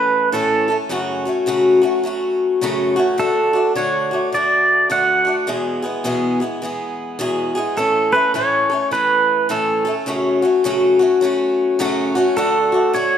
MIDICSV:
0, 0, Header, 1, 3, 480
1, 0, Start_track
1, 0, Key_signature, 3, "major"
1, 0, Tempo, 573066
1, 755, Time_signature, 4, 2, 24, 8
1, 11039, End_track
2, 0, Start_track
2, 0, Title_t, "Pedal steel guitar"
2, 0, Program_c, 0, 26
2, 0, Note_on_c, 0, 71, 84
2, 244, Note_off_c, 0, 71, 0
2, 279, Note_on_c, 0, 69, 68
2, 639, Note_off_c, 0, 69, 0
2, 2676, Note_on_c, 0, 69, 80
2, 3120, Note_off_c, 0, 69, 0
2, 3153, Note_on_c, 0, 73, 74
2, 3598, Note_off_c, 0, 73, 0
2, 3639, Note_on_c, 0, 74, 87
2, 4116, Note_off_c, 0, 74, 0
2, 4119, Note_on_c, 0, 78, 82
2, 4477, Note_off_c, 0, 78, 0
2, 6511, Note_on_c, 0, 69, 78
2, 6806, Note_on_c, 0, 71, 77
2, 6819, Note_off_c, 0, 69, 0
2, 6994, Note_off_c, 0, 71, 0
2, 6998, Note_on_c, 0, 73, 95
2, 7474, Note_off_c, 0, 73, 0
2, 7477, Note_on_c, 0, 71, 84
2, 7966, Note_on_c, 0, 69, 65
2, 7970, Note_off_c, 0, 71, 0
2, 8323, Note_off_c, 0, 69, 0
2, 10360, Note_on_c, 0, 69, 79
2, 10843, Note_on_c, 0, 73, 71
2, 10854, Note_off_c, 0, 69, 0
2, 11039, Note_off_c, 0, 73, 0
2, 11039, End_track
3, 0, Start_track
3, 0, Title_t, "Steel-string acoustic guitar"
3, 0, Program_c, 1, 25
3, 0, Note_on_c, 1, 52, 50
3, 0, Note_on_c, 1, 57, 57
3, 0, Note_on_c, 1, 61, 56
3, 0, Note_on_c, 1, 69, 56
3, 266, Note_off_c, 1, 52, 0
3, 272, Note_on_c, 1, 45, 71
3, 276, Note_on_c, 1, 52, 69
3, 277, Note_off_c, 1, 61, 0
3, 279, Note_off_c, 1, 57, 0
3, 283, Note_on_c, 1, 57, 73
3, 287, Note_on_c, 1, 61, 72
3, 288, Note_off_c, 1, 69, 0
3, 291, Note_on_c, 1, 69, 70
3, 559, Note_off_c, 1, 69, 0
3, 569, Note_on_c, 1, 69, 48
3, 571, Note_off_c, 1, 45, 0
3, 574, Note_off_c, 1, 52, 0
3, 575, Note_off_c, 1, 61, 0
3, 577, Note_off_c, 1, 57, 0
3, 585, Note_on_c, 1, 61, 49
3, 600, Note_on_c, 1, 57, 43
3, 748, Note_on_c, 1, 42, 74
3, 752, Note_off_c, 1, 57, 0
3, 753, Note_off_c, 1, 69, 0
3, 753, Note_on_c, 1, 49, 66
3, 755, Note_off_c, 1, 61, 0
3, 759, Note_on_c, 1, 54, 68
3, 762, Note_on_c, 1, 57, 73
3, 765, Note_on_c, 1, 61, 81
3, 772, Note_on_c, 1, 66, 75
3, 1040, Note_off_c, 1, 66, 0
3, 1049, Note_off_c, 1, 42, 0
3, 1050, Note_on_c, 1, 66, 55
3, 1052, Note_off_c, 1, 49, 0
3, 1052, Note_off_c, 1, 61, 0
3, 1054, Note_off_c, 1, 54, 0
3, 1056, Note_off_c, 1, 57, 0
3, 1062, Note_on_c, 1, 61, 51
3, 1071, Note_on_c, 1, 57, 48
3, 1079, Note_on_c, 1, 54, 39
3, 1224, Note_off_c, 1, 54, 0
3, 1224, Note_on_c, 1, 42, 60
3, 1226, Note_off_c, 1, 57, 0
3, 1230, Note_on_c, 1, 49, 74
3, 1232, Note_off_c, 1, 61, 0
3, 1233, Note_off_c, 1, 66, 0
3, 1235, Note_on_c, 1, 54, 66
3, 1236, Note_on_c, 1, 57, 77
3, 1242, Note_on_c, 1, 61, 80
3, 1244, Note_on_c, 1, 66, 75
3, 1511, Note_off_c, 1, 66, 0
3, 1521, Note_on_c, 1, 66, 60
3, 1522, Note_off_c, 1, 61, 0
3, 1527, Note_off_c, 1, 42, 0
3, 1529, Note_off_c, 1, 49, 0
3, 1530, Note_off_c, 1, 57, 0
3, 1532, Note_off_c, 1, 54, 0
3, 1532, Note_on_c, 1, 61, 53
3, 1540, Note_on_c, 1, 57, 50
3, 1551, Note_on_c, 1, 54, 44
3, 1695, Note_off_c, 1, 54, 0
3, 1705, Note_on_c, 1, 54, 51
3, 1706, Note_off_c, 1, 57, 0
3, 1708, Note_off_c, 1, 66, 0
3, 1713, Note_off_c, 1, 61, 0
3, 1716, Note_on_c, 1, 57, 58
3, 1725, Note_on_c, 1, 61, 58
3, 1734, Note_on_c, 1, 66, 70
3, 2188, Note_off_c, 1, 54, 0
3, 2189, Note_on_c, 1, 42, 71
3, 2191, Note_off_c, 1, 57, 0
3, 2194, Note_on_c, 1, 49, 76
3, 2197, Note_off_c, 1, 66, 0
3, 2198, Note_off_c, 1, 61, 0
3, 2199, Note_on_c, 1, 54, 78
3, 2201, Note_on_c, 1, 57, 93
3, 2207, Note_on_c, 1, 61, 88
3, 2207, Note_on_c, 1, 66, 98
3, 2469, Note_off_c, 1, 66, 0
3, 2479, Note_off_c, 1, 61, 0
3, 2479, Note_on_c, 1, 66, 62
3, 2489, Note_off_c, 1, 42, 0
3, 2489, Note_on_c, 1, 61, 57
3, 2491, Note_off_c, 1, 49, 0
3, 2491, Note_off_c, 1, 57, 0
3, 2493, Note_off_c, 1, 54, 0
3, 2501, Note_on_c, 1, 57, 56
3, 2509, Note_on_c, 1, 54, 49
3, 2655, Note_off_c, 1, 57, 0
3, 2657, Note_off_c, 1, 54, 0
3, 2661, Note_on_c, 1, 50, 60
3, 2665, Note_on_c, 1, 57, 64
3, 2666, Note_off_c, 1, 66, 0
3, 2670, Note_off_c, 1, 61, 0
3, 2674, Note_on_c, 1, 62, 67
3, 2679, Note_on_c, 1, 66, 68
3, 2948, Note_off_c, 1, 66, 0
3, 2958, Note_on_c, 1, 66, 49
3, 2964, Note_off_c, 1, 50, 0
3, 2965, Note_off_c, 1, 62, 0
3, 2966, Note_off_c, 1, 57, 0
3, 2975, Note_on_c, 1, 62, 45
3, 2986, Note_on_c, 1, 57, 44
3, 3143, Note_off_c, 1, 57, 0
3, 3145, Note_off_c, 1, 66, 0
3, 3145, Note_on_c, 1, 50, 69
3, 3147, Note_off_c, 1, 62, 0
3, 3153, Note_on_c, 1, 57, 64
3, 3157, Note_on_c, 1, 62, 63
3, 3167, Note_on_c, 1, 66, 68
3, 3432, Note_off_c, 1, 66, 0
3, 3442, Note_on_c, 1, 66, 45
3, 3446, Note_off_c, 1, 50, 0
3, 3449, Note_off_c, 1, 62, 0
3, 3450, Note_off_c, 1, 57, 0
3, 3460, Note_on_c, 1, 62, 50
3, 3470, Note_on_c, 1, 57, 39
3, 3622, Note_on_c, 1, 50, 56
3, 3625, Note_off_c, 1, 57, 0
3, 3627, Note_off_c, 1, 66, 0
3, 3632, Note_off_c, 1, 62, 0
3, 3636, Note_on_c, 1, 57, 52
3, 3642, Note_on_c, 1, 62, 67
3, 3650, Note_on_c, 1, 66, 65
3, 4091, Note_off_c, 1, 50, 0
3, 4099, Note_off_c, 1, 57, 0
3, 4101, Note_on_c, 1, 50, 66
3, 4104, Note_off_c, 1, 62, 0
3, 4109, Note_on_c, 1, 57, 80
3, 4112, Note_off_c, 1, 66, 0
3, 4114, Note_on_c, 1, 62, 74
3, 4122, Note_on_c, 1, 66, 72
3, 4385, Note_off_c, 1, 66, 0
3, 4395, Note_on_c, 1, 66, 55
3, 4402, Note_off_c, 1, 62, 0
3, 4404, Note_off_c, 1, 50, 0
3, 4408, Note_off_c, 1, 57, 0
3, 4412, Note_on_c, 1, 62, 47
3, 4423, Note_on_c, 1, 57, 42
3, 4581, Note_on_c, 1, 40, 68
3, 4584, Note_off_c, 1, 66, 0
3, 4586, Note_on_c, 1, 47, 73
3, 4590, Note_off_c, 1, 57, 0
3, 4590, Note_on_c, 1, 52, 77
3, 4592, Note_off_c, 1, 62, 0
3, 4593, Note_on_c, 1, 56, 67
3, 4599, Note_on_c, 1, 59, 76
3, 4603, Note_on_c, 1, 68, 70
3, 4868, Note_off_c, 1, 68, 0
3, 4878, Note_on_c, 1, 68, 54
3, 4879, Note_off_c, 1, 59, 0
3, 4884, Note_off_c, 1, 40, 0
3, 4887, Note_off_c, 1, 47, 0
3, 4889, Note_off_c, 1, 52, 0
3, 4889, Note_on_c, 1, 59, 50
3, 4890, Note_off_c, 1, 56, 0
3, 4899, Note_on_c, 1, 56, 45
3, 4906, Note_on_c, 1, 52, 49
3, 5060, Note_off_c, 1, 52, 0
3, 5060, Note_on_c, 1, 40, 74
3, 5063, Note_off_c, 1, 56, 0
3, 5064, Note_on_c, 1, 47, 78
3, 5065, Note_off_c, 1, 68, 0
3, 5067, Note_off_c, 1, 59, 0
3, 5070, Note_on_c, 1, 52, 81
3, 5074, Note_on_c, 1, 56, 78
3, 5078, Note_on_c, 1, 59, 78
3, 5083, Note_on_c, 1, 68, 84
3, 5350, Note_off_c, 1, 68, 0
3, 5360, Note_on_c, 1, 68, 48
3, 5362, Note_off_c, 1, 59, 0
3, 5364, Note_off_c, 1, 40, 0
3, 5366, Note_off_c, 1, 47, 0
3, 5369, Note_off_c, 1, 52, 0
3, 5370, Note_off_c, 1, 56, 0
3, 5372, Note_on_c, 1, 59, 53
3, 5380, Note_on_c, 1, 56, 52
3, 5391, Note_on_c, 1, 52, 49
3, 5533, Note_off_c, 1, 52, 0
3, 5543, Note_on_c, 1, 52, 61
3, 5546, Note_off_c, 1, 56, 0
3, 5547, Note_off_c, 1, 68, 0
3, 5552, Note_off_c, 1, 59, 0
3, 5556, Note_on_c, 1, 56, 57
3, 5566, Note_on_c, 1, 59, 64
3, 5572, Note_on_c, 1, 68, 74
3, 6020, Note_off_c, 1, 52, 0
3, 6021, Note_on_c, 1, 40, 85
3, 6026, Note_off_c, 1, 56, 0
3, 6026, Note_on_c, 1, 47, 82
3, 6027, Note_off_c, 1, 59, 0
3, 6029, Note_off_c, 1, 68, 0
3, 6030, Note_on_c, 1, 52, 80
3, 6036, Note_on_c, 1, 56, 74
3, 6037, Note_on_c, 1, 59, 75
3, 6039, Note_on_c, 1, 68, 82
3, 6314, Note_off_c, 1, 68, 0
3, 6324, Note_on_c, 1, 68, 68
3, 6325, Note_off_c, 1, 40, 0
3, 6325, Note_off_c, 1, 59, 0
3, 6327, Note_off_c, 1, 47, 0
3, 6329, Note_off_c, 1, 52, 0
3, 6332, Note_off_c, 1, 56, 0
3, 6335, Note_on_c, 1, 59, 57
3, 6344, Note_on_c, 1, 56, 54
3, 6354, Note_on_c, 1, 52, 49
3, 6502, Note_off_c, 1, 52, 0
3, 6505, Note_on_c, 1, 45, 65
3, 6509, Note_off_c, 1, 68, 0
3, 6512, Note_on_c, 1, 52, 66
3, 6514, Note_off_c, 1, 56, 0
3, 6514, Note_off_c, 1, 59, 0
3, 6517, Note_on_c, 1, 57, 63
3, 6523, Note_on_c, 1, 61, 67
3, 6526, Note_on_c, 1, 69, 64
3, 6793, Note_off_c, 1, 69, 0
3, 6803, Note_on_c, 1, 69, 52
3, 6807, Note_off_c, 1, 45, 0
3, 6810, Note_off_c, 1, 61, 0
3, 6811, Note_off_c, 1, 52, 0
3, 6813, Note_off_c, 1, 57, 0
3, 6820, Note_on_c, 1, 61, 45
3, 6830, Note_on_c, 1, 57, 42
3, 6986, Note_on_c, 1, 45, 70
3, 6989, Note_off_c, 1, 69, 0
3, 6990, Note_off_c, 1, 57, 0
3, 6990, Note_off_c, 1, 61, 0
3, 6992, Note_on_c, 1, 52, 76
3, 7000, Note_on_c, 1, 57, 67
3, 7000, Note_on_c, 1, 61, 64
3, 7005, Note_on_c, 1, 69, 68
3, 7273, Note_off_c, 1, 69, 0
3, 7283, Note_on_c, 1, 69, 50
3, 7288, Note_off_c, 1, 45, 0
3, 7290, Note_off_c, 1, 61, 0
3, 7291, Note_off_c, 1, 52, 0
3, 7295, Note_off_c, 1, 57, 0
3, 7300, Note_on_c, 1, 61, 51
3, 7314, Note_on_c, 1, 57, 42
3, 7466, Note_off_c, 1, 57, 0
3, 7466, Note_on_c, 1, 52, 59
3, 7469, Note_off_c, 1, 69, 0
3, 7476, Note_off_c, 1, 61, 0
3, 7476, Note_on_c, 1, 57, 51
3, 7486, Note_on_c, 1, 61, 53
3, 7493, Note_on_c, 1, 69, 63
3, 7944, Note_off_c, 1, 52, 0
3, 7949, Note_on_c, 1, 45, 76
3, 7953, Note_off_c, 1, 61, 0
3, 7954, Note_on_c, 1, 52, 78
3, 7956, Note_off_c, 1, 57, 0
3, 7959, Note_on_c, 1, 57, 75
3, 7963, Note_on_c, 1, 61, 72
3, 7966, Note_off_c, 1, 69, 0
3, 7969, Note_on_c, 1, 69, 77
3, 8238, Note_off_c, 1, 69, 0
3, 8248, Note_on_c, 1, 69, 56
3, 8250, Note_off_c, 1, 45, 0
3, 8253, Note_off_c, 1, 52, 0
3, 8255, Note_off_c, 1, 57, 0
3, 8255, Note_off_c, 1, 61, 0
3, 8266, Note_on_c, 1, 61, 49
3, 8278, Note_on_c, 1, 57, 45
3, 8427, Note_on_c, 1, 42, 66
3, 8433, Note_off_c, 1, 69, 0
3, 8433, Note_on_c, 1, 49, 72
3, 8434, Note_off_c, 1, 57, 0
3, 8435, Note_off_c, 1, 61, 0
3, 8439, Note_on_c, 1, 54, 74
3, 8444, Note_on_c, 1, 57, 72
3, 8445, Note_on_c, 1, 61, 74
3, 8449, Note_on_c, 1, 66, 74
3, 8719, Note_off_c, 1, 66, 0
3, 8729, Note_off_c, 1, 61, 0
3, 8730, Note_off_c, 1, 42, 0
3, 8730, Note_on_c, 1, 66, 51
3, 8733, Note_off_c, 1, 49, 0
3, 8736, Note_off_c, 1, 54, 0
3, 8738, Note_off_c, 1, 57, 0
3, 8739, Note_on_c, 1, 61, 51
3, 8750, Note_on_c, 1, 57, 49
3, 8756, Note_on_c, 1, 54, 43
3, 8912, Note_off_c, 1, 54, 0
3, 8913, Note_on_c, 1, 42, 81
3, 8914, Note_off_c, 1, 66, 0
3, 8918, Note_off_c, 1, 57, 0
3, 8919, Note_off_c, 1, 61, 0
3, 8920, Note_on_c, 1, 49, 74
3, 8922, Note_on_c, 1, 54, 82
3, 8928, Note_on_c, 1, 57, 80
3, 8930, Note_on_c, 1, 61, 88
3, 8932, Note_on_c, 1, 66, 88
3, 9197, Note_off_c, 1, 66, 0
3, 9207, Note_on_c, 1, 66, 54
3, 9210, Note_off_c, 1, 61, 0
3, 9213, Note_off_c, 1, 42, 0
3, 9217, Note_off_c, 1, 49, 0
3, 9218, Note_off_c, 1, 54, 0
3, 9220, Note_on_c, 1, 61, 53
3, 9221, Note_off_c, 1, 57, 0
3, 9230, Note_on_c, 1, 57, 54
3, 9236, Note_on_c, 1, 54, 46
3, 9380, Note_off_c, 1, 54, 0
3, 9390, Note_off_c, 1, 57, 0
3, 9390, Note_on_c, 1, 54, 59
3, 9393, Note_off_c, 1, 66, 0
3, 9400, Note_off_c, 1, 61, 0
3, 9401, Note_on_c, 1, 57, 72
3, 9411, Note_on_c, 1, 61, 74
3, 9419, Note_on_c, 1, 66, 68
3, 9874, Note_off_c, 1, 54, 0
3, 9875, Note_on_c, 1, 42, 81
3, 9879, Note_off_c, 1, 57, 0
3, 9880, Note_on_c, 1, 49, 79
3, 9883, Note_off_c, 1, 61, 0
3, 9883, Note_on_c, 1, 54, 90
3, 9886, Note_off_c, 1, 66, 0
3, 9888, Note_on_c, 1, 57, 82
3, 9893, Note_on_c, 1, 61, 90
3, 9896, Note_on_c, 1, 66, 94
3, 10168, Note_off_c, 1, 66, 0
3, 10175, Note_off_c, 1, 42, 0
3, 10178, Note_off_c, 1, 49, 0
3, 10178, Note_on_c, 1, 66, 67
3, 10179, Note_off_c, 1, 54, 0
3, 10180, Note_off_c, 1, 61, 0
3, 10182, Note_off_c, 1, 57, 0
3, 10190, Note_on_c, 1, 61, 64
3, 10198, Note_on_c, 1, 57, 56
3, 10205, Note_on_c, 1, 54, 49
3, 10354, Note_off_c, 1, 54, 0
3, 10356, Note_off_c, 1, 57, 0
3, 10357, Note_on_c, 1, 50, 66
3, 10359, Note_off_c, 1, 66, 0
3, 10365, Note_off_c, 1, 61, 0
3, 10366, Note_on_c, 1, 57, 71
3, 10370, Note_on_c, 1, 62, 73
3, 10375, Note_on_c, 1, 66, 77
3, 10644, Note_off_c, 1, 66, 0
3, 10655, Note_on_c, 1, 66, 52
3, 10656, Note_off_c, 1, 50, 0
3, 10661, Note_off_c, 1, 57, 0
3, 10663, Note_off_c, 1, 62, 0
3, 10672, Note_on_c, 1, 62, 45
3, 10682, Note_on_c, 1, 57, 36
3, 10831, Note_off_c, 1, 57, 0
3, 10834, Note_on_c, 1, 50, 74
3, 10838, Note_off_c, 1, 66, 0
3, 10839, Note_off_c, 1, 62, 0
3, 10841, Note_on_c, 1, 57, 72
3, 10849, Note_on_c, 1, 62, 72
3, 10855, Note_on_c, 1, 66, 79
3, 11039, Note_off_c, 1, 50, 0
3, 11039, Note_off_c, 1, 57, 0
3, 11039, Note_off_c, 1, 62, 0
3, 11039, Note_off_c, 1, 66, 0
3, 11039, End_track
0, 0, End_of_file